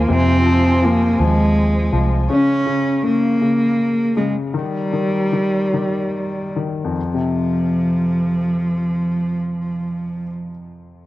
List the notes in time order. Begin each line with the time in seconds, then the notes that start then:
Already playing: F3 A#3 F4 C5 G#5
0.08 F2 C3 C4
0.46 F3
0.82 F3 A#3
1.19 D#2 F3 G#3
1.93 C2 F3
2.30 C#3 C#4
2.66 C#3
3.04 C#3 A#3
3.41 C#3
4.17 C#3 G#3
4.54 D#3 G3
4.93 D#3
5.33 D#3
5.74 D#3
6.56 D#3
6.84 F2
7.00 F3
7.14 C3